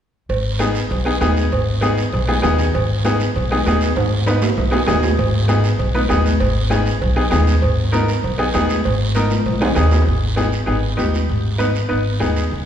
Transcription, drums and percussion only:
0.30 cowbell medium
0.30 high conga soft
0.30 long guiro medium
0.60 high conga medium
0.60 short guiro medium
0.75 short guiro medium
0.90 cowbell medium
0.90 high conga soft
0.90 long guiro medium
1.21 high conga medium
1.21 low timbale medium
1.21 short guiro medium
1.37 short guiro medium
1.52 cowbell loud
1.52 high conga soft
1.52 long guiro medium
1.82 high conga medium
1.82 short guiro medium
1.98 short guiro medium
2.13 cowbell medium
2.13 high conga soft
2.13 long guiro medium
2.29 high conga medium
2.44 high conga medium
2.44 low conga medium
2.44 low timbale medium
2.44 short guiro medium
2.58 low conga medium
2.58 short guiro medium
2.73 cowbell loud
2.73 high conga soft
2.73 long guiro medium
3.05 high conga medium
3.05 short guiro medium
3.20 short guiro medium
3.36 cowbell medium
3.36 high conga soft
3.36 long guiro medium
3.50 high conga medium
3.65 high conga medium
3.65 low timbale medium
3.65 short guiro medium
3.81 short guiro medium
3.96 cowbell loud
3.96 high conga soft
3.96 high timbale medium
3.96 long guiro medium
4.26 high conga medium
4.26 high timbale medium
4.26 short guiro medium
4.42 low timbale loud
4.42 short guiro medium
4.57 cowbell medium
4.57 high conga soft
4.57 low timbale medium
4.57 long guiro medium
4.73 low timbale medium
4.88 high conga medium
4.88 low conga medium
4.88 low timbale loud
4.88 short guiro medium
5.03 high conga medium
5.03 low timbale medium
5.03 short guiro medium
5.17 cowbell loud
5.17 high conga soft
5.17 long guiro medium
5.48 high conga medium
5.48 short guiro medium
5.64 short guiro medium
5.79 cowbell medium
5.79 high conga soft
5.79 long guiro medium
5.94 high conga medium
6.10 high conga medium
6.10 low timbale medium
6.10 short guiro medium
6.25 high conga medium
6.25 short guiro medium
6.40 cowbell loud
6.40 high conga soft
6.40 long guiro medium
6.70 high conga medium
6.70 short guiro medium
6.86 short guiro medium
7.01 cowbell medium
7.01 high conga soft
7.01 long guiro medium
7.32 high conga medium
7.32 low conga medium
7.32 short guiro medium
7.47 low conga medium
7.47 short guiro medium
7.62 cowbell loud
7.62 high conga soft
7.62 long guiro medium
7.93 high conga loud
7.93 short guiro medium
8.08 short guiro medium
8.23 cowbell medium
8.23 high conga soft
8.23 long guiro medium
8.54 high conga medium
8.54 low timbale medium
8.54 short guiro medium
8.69 high conga medium
8.69 short guiro medium
8.84 cowbell loud
8.84 high conga soft
8.84 long guiro medium
9.15 high conga medium
9.15 short guiro medium
9.30 high conga medium
9.30 short guiro medium
9.46 cowbell medium
9.46 long guiro medium
9.51 high conga medium
9.62 high timbale medium
9.71 low conga medium
9.76 short guiro medium
9.81 low conga medium
9.91 low timbale loud
9.91 short guiro medium
10.02 low conga medium
10.07 high conga soft
10.07 long guiro medium
10.37 high conga medium
10.37 short guiro medium
10.52 short guiro medium
10.67 high conga soft
10.67 long guiro medium
10.98 high conga medium
10.98 short guiro medium
11.14 high conga medium
11.14 short guiro medium
11.29 high conga soft
11.29 long guiro medium
11.60 high conga medium
11.60 short guiro medium
11.75 short guiro medium
11.91 high conga soft
11.91 long guiro medium
12.20 high conga medium
12.20 short guiro medium
12.36 short guiro medium
12.51 high conga soft
12.51 long guiro medium

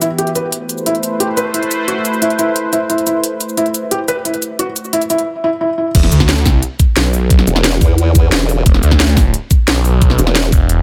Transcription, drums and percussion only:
0.02 closed hi-hat medium
0.02 cabasa medium
0.18 closed hi-hat medium
0.27 closed hi-hat soft
0.35 closed hi-hat medium
0.35 cabasa medium
0.52 closed hi-hat medium
0.69 closed hi-hat medium
0.69 cabasa medium
0.78 cabasa soft
0.86 closed hi-hat medium
0.95 closed hi-hat soft
1.03 closed hi-hat medium
1.03 cabasa medium
1.20 closed hi-hat medium
1.37 closed hi-hat medium
1.37 cabasa medium
1.54 closed hi-hat medium
1.63 closed hi-hat soft
1.71 closed hi-hat medium
1.71 cabasa medium
1.88 closed hi-hat medium
2.05 closed hi-hat medium
2.05 cabasa medium
2.13 cabasa soft
2.22 closed hi-hat medium
2.30 closed hi-hat soft
2.39 closed hi-hat medium
2.39 cabasa medium
2.56 closed hi-hat medium
2.73 closed hi-hat medium
2.73 cabasa medium
2.90 closed hi-hat medium
2.98 closed hi-hat soft
3.07 closed hi-hat medium
3.07 cabasa medium
3.24 closed hi-hat loud
3.40 closed hi-hat medium
3.40 cabasa medium
3.49 cabasa soft
3.57 closed hi-hat medium
3.66 closed hi-hat soft
3.74 closed hi-hat medium
3.74 cabasa medium
3.91 closed hi-hat medium
4.08 closed hi-hat medium
4.08 cabasa medium
4.25 closed hi-hat medium
4.34 closed hi-hat soft
4.42 closed hi-hat medium
4.42 cabasa medium
4.59 closed hi-hat medium
4.76 closed hi-hat medium
4.76 cabasa medium
4.85 cabasa soft
4.93 closed hi-hat medium
5.02 closed hi-hat soft
5.02 cabasa soft
5.10 closed hi-hat medium
5.10 cabasa medium
5.18 closed hi-hat soft
5.95 kick loud
5.95 closed hi-hat loud
5.95 crash loud
6.03 snare soft
6.12 closed hi-hat medium
6.12 cabasa medium
6.20 kick medium
6.20 snare medium
6.29 snare loud
6.29 closed hi-hat loud
6.37 cabasa soft
6.46 kick loud
6.46 snare medium
6.46 open hi-hat medium
6.46 cabasa medium
6.63 closed hi-hat loud
6.79 kick loud
6.79 closed hi-hat medium
6.79 cabasa medium
6.96 snare loud
6.96 closed hi-hat medium
7.13 open hi-hat medium
7.13 cabasa medium
7.30 kick loud
7.30 closed hi-hat loud
7.39 snare soft
7.47 closed hi-hat medium
7.47 cabasa medium
7.56 snare soft
7.64 snare loud
7.64 closed hi-hat medium
7.73 cabasa soft
7.81 kick loud
7.81 open hi-hat medium
7.81 cabasa medium
7.98 closed hi-hat medium
8.15 kick loud
8.15 closed hi-hat medium
8.15 cabasa medium
8.32 snare loud
8.32 closed hi-hat loud
8.49 open hi-hat medium
8.49 cabasa medium
8.66 kick loud
8.66 closed hi-hat loud
8.74 snare soft
8.83 closed hi-hat medium
8.83 cabasa medium
8.91 kick medium
8.91 snare soft
9.00 snare loud
9.00 closed hi-hat medium
9.08 cabasa soft
9.17 kick loud
9.17 snare medium
9.17 open hi-hat medium
9.17 cabasa medium
9.34 closed hi-hat medium
9.51 kick loud
9.51 closed hi-hat medium
9.51 cabasa medium
9.68 snare loud
9.68 closed hi-hat medium
9.85 open hi-hat medium
9.85 cabasa medium
10.02 kick loud
10.02 closed hi-hat medium
10.10 snare soft
10.19 closed hi-hat medium
10.19 cabasa medium
10.27 snare soft
10.35 snare loud
10.35 closed hi-hat medium
10.44 cabasa soft
10.52 kick loud
10.52 open hi-hat medium
10.52 cabasa medium
10.69 closed hi-hat medium

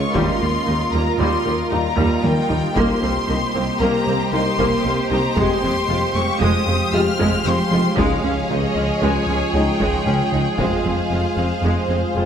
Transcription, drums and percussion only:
0.15 taiko medium
1.98 taiko low-mid medium
2.24 taiko high medium
2.50 taiko low medium
2.76 taiko medium
4.59 taiko medium
5.37 taiko medium
7.19 taiko medium
7.98 taiko medium
9.81 taiko medium
10.59 taiko medium

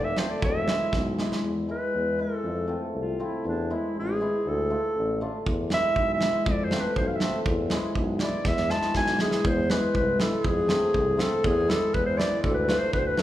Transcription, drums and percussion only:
0.17 snare medium
0.42 kick medium
0.68 snare medium
0.93 kick medium
0.93 snare soft
1.19 snare medium
1.32 snare medium
5.46 kick medium
5.70 snare medium
5.96 kick medium
6.21 snare medium
6.46 kick medium
6.71 snare medium
6.96 kick medium
7.20 snare medium
7.46 kick medium
7.70 snare medium
7.95 kick medium
8.19 snare medium
8.45 kick medium
8.45 snare soft
8.57 snare soft
8.70 snare medium
8.82 snare medium
8.94 kick medium
8.94 snare medium
9.06 snare medium
9.19 snare medium
9.31 snare medium
9.45 kick medium
9.70 snare medium
9.95 kick medium
10.20 snare medium
10.44 kick medium
10.69 snare medium
10.94 kick medium
11.19 snare medium
11.44 kick medium
11.70 snare medium
11.94 kick medium
12.20 snare medium
12.44 kick medium
12.69 snare medium
12.93 kick medium
13.17 snare medium

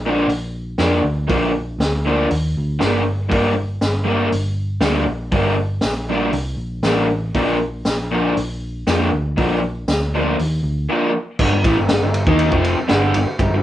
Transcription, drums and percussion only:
0.29 open hi-hat medium
0.78 snare loud
0.78 open hi-hat soft
1.30 kick loud
1.30 open hi-hat medium
1.80 snare loud
1.80 open hi-hat medium
2.31 open hi-hat medium
2.81 snare loud
2.81 open hi-hat medium
3.31 kick loud
3.31 open hi-hat medium
3.81 snare loud
3.81 open hi-hat medium
3.81 tambourine loud
4.32 open hi-hat medium
4.81 snare loud
4.81 open hi-hat soft
4.81 tambourine medium
5.32 kick loud
5.32 open hi-hat medium
5.81 snare loud
5.81 open hi-hat medium
5.81 tambourine medium
6.33 open hi-hat medium
6.83 snare loud
6.83 open hi-hat medium
6.83 tambourine medium
7.34 kick loud
7.34 open hi-hat medium
7.85 snare loud
7.85 open hi-hat medium
7.85 tambourine medium
8.37 open hi-hat medium
8.87 snare loud
8.87 open hi-hat soft
8.87 tambourine loud
9.38 kick loud
9.38 open hi-hat medium
9.88 snare loud
9.88 open hi-hat medium
9.88 tambourine loud
10.39 open hi-hat medium
11.39 kick loud
11.39 crash loud
11.64 kick loud
11.64 ride medium
11.89 snare loud
11.89 ride loud
12.14 ride medium
12.27 kick loud
12.39 ride loud
12.52 kick loud
12.64 ride medium
12.89 snare loud
12.89 ride medium
13.14 ride medium
13.39 kick loud
13.39 ride medium

